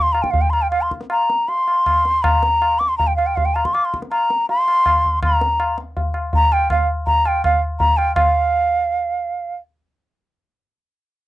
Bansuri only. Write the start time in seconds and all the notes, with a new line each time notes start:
0.02 C6
0.13 A#5
0.22 G5
0.31 F5
0.41 G5
0.50 A#5 C6
0.62 G5
0.71 F5
0.82 C6
1.11 A#5
1.48 C6
2.23 A#5
2.79 D6
2.89 C6
2.98 A#5
3.07 G5
3.16 F5
3.26 G5
3.36 F5
3.45 G5
3.55 A#5
3.65 C6
3.74 D6
3.85 C6
4.11 A#5
4.50 C6
5.25 A#5
6.35 A#5
6.53 G5
6.71 F5
7.07 A#5
7.27 G5
7.45 F5
7.79 A#5
7.97 G5
8.15 F5